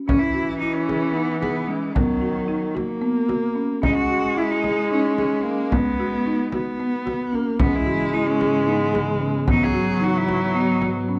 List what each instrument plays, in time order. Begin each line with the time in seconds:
0.08 viola E3, cello C#4, marimba C#4, frame drum
0.20 cello E4
0.34 marimba F#4
0.59 cello D#4, marimba E4
0.73 cello C#4
0.88 marimba G#4, frame drum
1.13 cello B3, marimba D#4
1.40 cello B3, marimba G#4, frame drum
1.67 cello G#3, marimba C#4
1.93 viola D#3, cello F#3, marimba B3, frame drum
2.21 marimba F#4
2.48 marimba D#4
2.75 viola A#3, marimba F#4, frame drum
3.02 marimba B3
3.29 marimba F#4, frame drum
3.55 marimba C#4
3.82 viola G#3, marimba C#4, cello D#4, frame drum
3.95 cello F#4
4.10 marimba F#4
4.36 marimba E4, cello E4
4.51 cello D#4
4.64 marimba G#4, frame drum
4.91 cello C#4, marimba D#4
5.17 cello C#4, marimba G#4, frame drum
5.44 cello A#3, marimba C#4
5.71 cello G#3, viola B3, marimba B3, frame drum
6.00 marimba F#4
6.26 marimba D#4
6.52 viola B3, marimba F#4, frame drum
6.80 marimba B3
7.06 marimba F#4, frame drum
7.33 viola A#3, marimba C#4, frame drum
7.59 ambient pad G#2 C#3 E3 B3, viola G#3, cello B3, marimba C#4, frame drum
7.76 cello E4
7.86 marimba F#4
8.14 cello D#4, marimba E4
8.27 cello C#4
8.41 marimba G#4, frame drum
8.66 cello B3, marimba D#4
8.93 marimba G#4, frame drum
9.21 marimba C#4
9.47 ambient pad F#3, viola F#3, marimba B3, cello D#4, frame drum
9.64 cello G#4
9.74 marimba F#4
10.01 marimba D#4, cello F#4
10.17 cello E4
10.28 marimba F#4, frame drum
10.55 marimba B3, cello D#4
10.82 marimba F#4, frame drum
11.09 marimba C#4